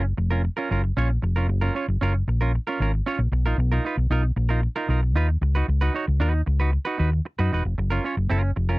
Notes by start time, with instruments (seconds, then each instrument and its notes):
Already playing: fingered electric bass F#1
0.03 muted clean electric guitar stroke
0.17 fingered electric bass F1, muted clean electric guitar stroke
0.31 clean electric guitar C#4 F4 A#4
0.44 muted clean electric guitar stroke
0.57 clean electric guitar C#4 F4 A#4
0.70 fingered electric bass F#1, clean electric guitar C#4 F4 A#4
0.84 muted clean electric guitar stroke
0.97 fingered electric bass A#1, clean electric guitar C#4 F4 C#5
1.10 muted clean electric guitar stroke
1.22 fingered electric bass F1, muted clean electric guitar stroke
1.36 clean electric guitar C#4 F4 A#4
1.48 fingered electric bass F#1, muted clean electric guitar stroke
1.61 clean electric guitar C#4 F4 A#4
1.75 clean electric guitar C#4 F4 C#5
1.88 fingered electric bass F#1
2.01 fingered electric bass F#1, clean electric guitar C#4 F4 A#4
2.14 muted clean electric guitar stroke
2.28 fingered electric bass A#1, muted clean electric guitar stroke
2.41 clean electric guitar C#4 F4 A#4
2.55 muted clean electric guitar stroke
2.67 clean electric guitar C#4 F4 A#4
2.80 fingered electric bass G#1, clean electric guitar C#4 F4 A#4
3.06 clean electric guitar C#4 F4 C#5
3.19 fingered electric bass A#1, muted clean electric guitar stroke
3.32 fingered electric bass B1, muted clean electric guitar stroke
3.45 fingered electric bass A#1, clean electric guitar D#4 F4 A#4
3.58 fingered electric bass B1, muted clean electric guitar stroke
3.72 clean electric guitar D#4 F4 A#4
3.85 clean electric guitar D#4 F4 B4
3.97 fingered electric bass B1
4.10 fingered electric bass B1, clean electric guitar D#4 F4 A#4
4.23 muted clean electric guitar stroke
4.36 fingered electric bass A#1, muted clean electric guitar stroke
4.49 clean electric guitar D#4 F4 A#4
4.62 muted clean electric guitar stroke
4.76 clean electric guitar D#4 F4 A#4
4.88 fingered electric bass B1, clean electric guitar D#4 F4 A#4
5.15 fingered electric bass D#2, clean electric guitar D#4 F4 B4
5.29 muted clean electric guitar stroke
5.41 fingered electric bass C#2, muted clean electric guitar stroke
5.55 clean electric guitar D#4 F#4 B4
5.68 fingered electric bass C#2, muted clean electric guitar stroke
5.81 clean electric guitar D#4 F#4 B4
5.94 clean electric guitar D#4 F#4 C#5
6.08 fingered electric bass C#2
6.20 fingered electric bass D#2, clean electric guitar D#4 F#4 B4
6.34 muted clean electric guitar stroke
6.46 fingered electric bass C#2, muted clean electric guitar stroke
6.60 clean electric guitar D#4 F#4 B4
6.72 muted clean electric guitar stroke
6.85 clean electric guitar D#4 F#4 B4
6.98 fingered electric bass D#2, clean electric guitar D#4 F#4 B4
7.13 muted clean electric guitar stroke
7.25 muted clean electric guitar stroke
7.39 fingered electric bass F#2, clean electric guitar D#4 F#4 B4
7.52 fingered electric bass E1, clean electric guitar D#4 F#4 B4
7.65 fingered electric bass F1
7.78 fingered electric bass F#1, muted clean electric guitar stroke
7.90 clean electric guitar C#4 F4 A#4
8.04 clean electric guitar C#4 F4 C#5
8.17 fingered electric bass F#1, muted clean electric guitar stroke
8.30 fingered electric bass F#1, clean electric guitar C#4 F4 A#4
8.43 muted clean electric guitar stroke
8.56 fingered electric bass F1, muted clean electric guitar stroke
8.69 clean electric guitar C#4 F4 A#4